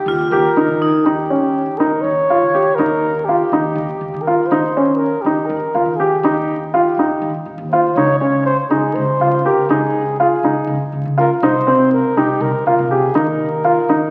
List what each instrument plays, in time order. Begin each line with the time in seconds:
Already playing: flugelhorn G4
0.06 upright bass D#2, vibraphone F4
0.30 upright bass D#2, grand piano G4, flugelhorn A#4
0.56 upright bass D#2, grand piano D#4
0.68 upright bass D#3
0.82 vibraphone D#4
1.05 upright bass D#2, grand piano D#4, flugelhorn G4
1.30 grand piano C#4
1.78 upright bass D#2, grand piano D#4, flugelhorn A#4
2.02 upright bass D#2, flugelhorn C#5
2.30 upright bass D#2, grand piano F4
2.42 upright bass D#3
2.54 grand piano G4
2.75 upright bass D#2, grand piano D#4, flugelhorn A#4
3.25 grand piano F4, flugelhorn G4
3.52 upright bass D#2, grand piano D#4
3.75 upright bass D#2
4.01 upright bass D#2
4.14 upright bass D#3
4.22 flugelhorn A#4
4.27 grand piano F4
4.47 flugelhorn C5
4.51 upright bass D#2, grand piano D#4
4.77 grand piano C#4
4.97 flugelhorn A#4
5.22 upright bass D#2, flugelhorn G4
5.26 grand piano D#4
5.46 upright bass D#2, flugelhorn A#4
5.74 upright bass D#2, grand piano F4
5.86 upright bass D#3
5.96 grand piano G4, flugelhorn G#4
6.22 upright bass D#2, grand piano D#4, flugelhorn G4
6.72 grand piano F4, flugelhorn G4
6.97 upright bass D#2, grand piano D#4
7.22 upright bass D#2
7.46 upright bass D#2
7.58 upright bass D#2
7.71 grand piano F4, flugelhorn C5
7.96 upright bass C#2, grand piano D#4, flugelhorn C#5
8.19 grand piano C#4, flugelhorn C#5
8.46 flugelhorn C5
8.69 upright bass C#2, grand piano D#4, flugelhorn G#4
8.94 upright bass C#2, flugelhorn C5
9.20 upright bass C#2, grand piano F4
9.32 upright bass C#3
9.46 grand piano G4, flugelhorn A#4
9.69 upright bass C#2, grand piano D#4, flugelhorn G#4
10.20 grand piano F4, flugelhorn G#4
10.43 upright bass C#2, grand piano D#4
10.67 upright bass C#2
10.93 upright bass C#2
11.05 upright bass C#3
11.18 grand piano F4, flugelhorn A#4
11.42 upright bass C2, grand piano D#4, flugelhorn C5
11.67 grand piano C4
11.93 flugelhorn A#4
12.17 upright bass C2, grand piano D#4, flugelhorn G4
12.40 upright bass C2, flugelhorn A#4
12.66 upright bass C2, grand piano F4, flugelhorn A#4
12.79 upright bass C3
12.91 grand piano G4, flugelhorn G#4
13.15 upright bass D#2, grand piano D#4, flugelhorn A#4
13.65 grand piano F4
13.88 upright bass D#2, grand piano D#4